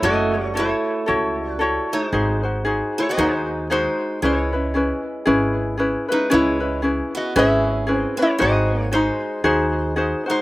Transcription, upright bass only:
0.02 F#1
1.09 C#2
2.13 G#1
3.18 D#2
4.23 C#2
5.27 G#1
6.32 C#2
7.36 G#1
8.41 G#1
9.44 D#2

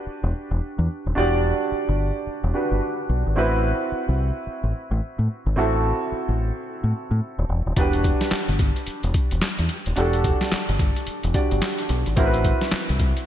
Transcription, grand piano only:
Already playing: D4 F#4 G4 B4
1.15 D4 F#4 G4 D5
2.54 D4 F#4 G4 B4
3.36 C4 E4 F#4 B4
5.56 C4 E4 F#4 A4
7.76 D4 F#4 G4 B4
9.96 D4 F#4 G4 A4
11.34 D4 F#4 G4 D5
12.16 C4 E4 F#4 A#4
12.25 B4

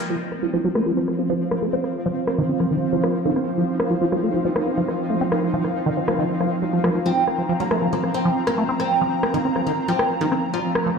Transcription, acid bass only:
0.10 F3
0.43 F3
0.54 F3
0.64 F#3
0.75 A3
0.86 F3
0.97 F3
1.19 C4
1.30 F3
1.62 A3
1.73 C4
2.06 F3
2.38 D#3
2.49 C4
2.60 F3
2.71 D#3
2.93 F3
3.25 D#3
3.36 C4
3.58 F3
3.90 F3
4.01 F3
4.12 F#3
4.23 A3
4.34 F3
4.45 F3
4.67 C4
4.77 F3
5.10 A3
5.21 C4
5.54 F3
5.86 D#3
5.97 C4
6.08 F3
6.19 D#3
6.40 F3
6.62 F#3
6.73 F3
6.84 F3
6.95 F3
7.06 F3
7.38 F3
7.49 F3
7.60 F#3
7.71 A3
7.82 F3
7.93 F3
8.14 C4
8.25 F3
8.58 A3
8.69 C4
9.01 F3
9.34 D#3
9.45 C4
9.56 F3
9.67 D#3
9.88 F3
10.21 D#3
10.32 C4
10.54 F3
10.86 F3

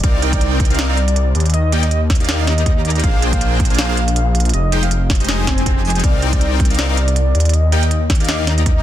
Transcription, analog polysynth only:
0.04 C4 D#4 A#4 D5 F5
0.22 C4 D#4 A#4 D5 G5
0.70 C4 D#4 A#4 D5 F5
0.89 C4 D#4 A#4 D5 F5
1.72 A#3 D#4 G4 D5 G5
2.20 A#3 D#4 G4 D5 F5
2.47 A#3 D#4 G4 D5 A#5
3.04 A#3 D4 G#4 C5 F5
3.22 A#3 D4 G#4 C5 G5
3.70 A#3 D4 G#4 C5 F5
3.89 A#3 D4 G#4 C5 F5
4.72 G#3 D#4 G4 C5 G5
5.20 G#3 D#4 G4 C5 D#5
5.47 G#3 D#4 G4 C5
6.04 C4 D#4 A#4 D5 F5
6.22 C4 D#4 A#4 D5 G5
6.70 C4 D#4 A#4 D5 F5
6.89 C4 D#4 A#4 D5 F5
7.72 A#3 D#4 G4 D5 G5
8.20 A#3 D#4 G4 D5 F5
8.47 A#3 D#4 G4 D5 A#5

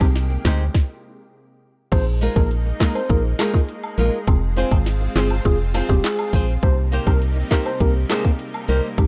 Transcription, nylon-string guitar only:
0.30 muted nylon-string guitar stroke
0.44 G#3 D#4 G4 C5
2.21 G#3 D#4 F4 A#4
2.65 muted nylon-string guitar stroke
2.80 G#3 D#4 F4 A#4
3.39 G#3 D#4 F4 A#4
3.98 G#3 D#4 F4 A#4
4.56 C4 F4 G#4 C5
5.01 muted nylon-string guitar stroke
5.15 C4 F4 G#4 C5
5.74 C4 F4 G#4 C5
6.33 C4 F4 G#4 C5
6.92 A#3 D#4 G4 C5
7.36 muted nylon-string guitar stroke
7.50 A#3 D#4 G4 C5
8.09 A#3 D#4 G4 C5
8.68 A#3 D#4 G4 C5

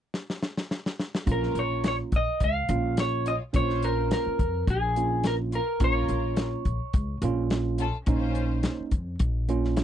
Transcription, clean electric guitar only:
1.32 A#4
1.59 C#5
1.88 C#5
2.16 D#5
2.44 F5
3.00 C#5
3.28 D#5
3.56 C#5
3.84 A#4
4.13 A#4
4.70 G#4
5.27 A#4
5.55 A#4
5.84 C#5

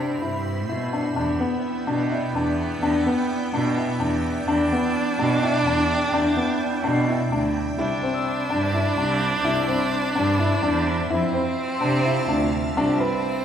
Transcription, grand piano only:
0.00 D4
0.22 E4
0.69 E4
0.93 D4
1.16 D4
1.40 B3
1.87 D4
2.11 E4
2.35 D4
2.83 D4
3.06 B3
3.53 D4
3.77 E4
4.00 D4
4.48 D4
4.72 B3
5.19 D4
5.42 E4
5.66 D4
6.13 D4
6.37 B3
6.84 D4
7.08 E4
7.32 D4
7.78 E4
8.03 C4
8.50 D4
8.74 E4
8.98 D4
9.44 E4
9.68 C4
10.16 D4
10.39 E4
10.63 D4
11.10 E4
11.34 C4
11.81 D4
12.05 E4
12.29 D4
12.77 D4
13.00 B4

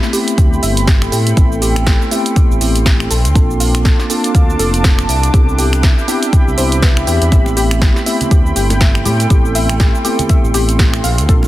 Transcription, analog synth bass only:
0.38 D2
0.63 G1
1.12 A2
1.37 A1
2.51 A1
2.61 A1
3.11 A#1
3.25 D2
3.35 A#1
4.35 D2
4.59 F1
5.09 C2
5.34 C2
6.47 C2
6.58 C2
7.07 E2
7.22 E2
7.32 A1
8.31 D2
8.56 G1
9.05 A2
9.30 A1
10.44 A1
10.54 A1
11.04 A#1
11.18 D2
11.29 A#1

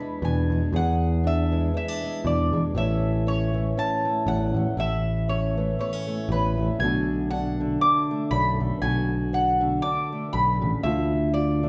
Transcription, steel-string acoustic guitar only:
Already playing: E2 E3 D4 G#4
0.00 G#3
0.23 B2 D4
0.52 G#3
0.73 E2 G#4
1.24 D4
1.52 E3 G#3
1.74 B3
1.88 D4
2.03 G#3
2.23 B2 D4
2.54 G#3
2.75 A2 E3 A3 C#4 E4
3.27 C#4
3.53 E3 A3
3.77 C#4
4.05 A3
4.27 E2 C#4
4.56 A3
4.77 A2 E4
5.29 C#4
5.57 E3 A3
5.79 B3
5.93 C#4
6.07 A3
6.30 E2 C#4
6.59 A3
6.81 B2 D3 A3 D4 F#4
7.33 D4
7.60 D3 A3
7.82 D4
8.11 A3
8.31 F#2 D4
8.61 A3
8.83 B2 F#4
9.33 D4
9.60 D3 A3
9.83 D4
10.12 A3
10.33 B2
10.61 C#3
10.85 D3 F4
11.35 F4
11.63 A3 D4

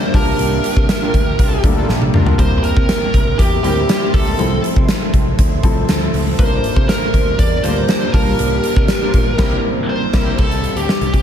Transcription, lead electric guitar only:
Already playing: C5
0.16 A#4
2.40 C5
2.59 C5
2.64 A#4
3.38 G4
3.64 G4
4.14 A4
6.39 C5
6.89 A#4
7.39 D5
7.63 C5
8.13 A#4
9.90 C5
10.39 A4
10.76 G4
11.14 G4

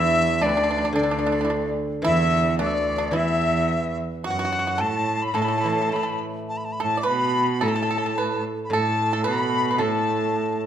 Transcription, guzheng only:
Already playing: E3 F#3 D4 F#4
0.93 D3
2.02 E3
3.11 E3
5.34 A2
5.64 E3
5.92 A3
7.61 A2
8.70 A2
9.78 A2

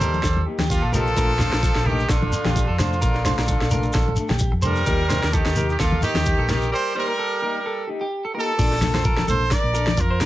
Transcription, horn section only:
Already playing: A4 C5
0.70 A#3 F4
0.93 F4 A4
1.85 D#4 G4
2.10 D4 F4
2.80 D4 F4
4.64 G4 A#4
5.34 D#4 G4
5.69 D#4 G4
5.79 A#3 F4
6.02 D#4 G4
6.50 D#4 G4
6.73 G4 C5
6.97 G4 A#4
8.36 F4 A4
9.29 A4 C5
9.52 A#4 D5
10.00 F4 A#4

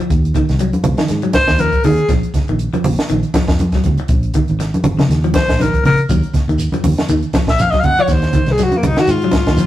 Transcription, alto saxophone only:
1.35 C5
1.60 A#4
1.84 G#4
5.35 C5
5.62 A#4
5.86 A#4
7.50 E5
7.61 F5
7.70 D#5
7.80 F5
7.84 F#5
8.02 C#5
8.12 C5
8.51 G#4
8.64 F#4
8.77 A#3
8.87 D#4
8.99 F#4
9.10 F4

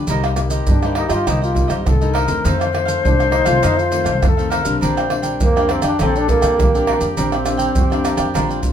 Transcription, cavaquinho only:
0.09 D#4 A#4 C5 D#5
0.25 A#4 C5 D#5
0.38 muted cavaquinho stroke
0.51 A#4 C5 D#5
0.84 A#4 C5 D#5
0.96 D#4 A#4 C5 D#5
1.10 A#4 C5 D#5
1.26 D#4 A#4 C5 D#5
1.42 A#4 C5 D#5
1.54 muted cavaquinho stroke
1.68 A#4 C5 D#5
2.01 A#4 C5 D#5
2.13 D#4 A#4 C5 D#5
2.26 A#4 C5 D#5
2.44 D#4 A4 C5 F5
2.59 A4 C5 F5
2.73 muted cavaquinho stroke
2.85 A4 C5 F5
3.19 A4 C5 F5
3.31 D#4 A4 C5 F5
3.45 A4 C5 F5
3.62 D#4 A4 C5 F5
3.77 A4 C5 F5
3.90 muted cavaquinho stroke
4.04 A4 C5 F5
4.37 A4 C5 F5
4.50 D#4 A4 C5 F5
4.64 A4 C5 F5
4.81 D4 A#4 D5 G5
4.97 A#4 D5 G5
5.10 muted cavaquinho stroke
5.22 A#4 D5 G5
5.56 A#4 D5 G5
5.70 D4 A#4 D5 G5
5.83 A#4 D5 G5
6.00 D4 A#4 D5 G5
6.15 A#4 D5 G5
6.28 muted cavaquinho stroke
6.41 A#4 D5 G5
6.74 A#4 D5 G5
6.87 D4 A#4 D5 G5
7.00 A#4 D5 G5
7.17 D4 A#4 D5 G5
7.32 A#4 D5 G5
7.45 muted cavaquinho stroke
7.57 A#4 D5 G5
7.90 A#4 D5 G5
8.04 D4 A#4 D5 G5
8.17 A#4 D5 G5
8.34 D4 A#4 D5 G5
8.49 A#4 D5 G5
8.62 muted cavaquinho stroke

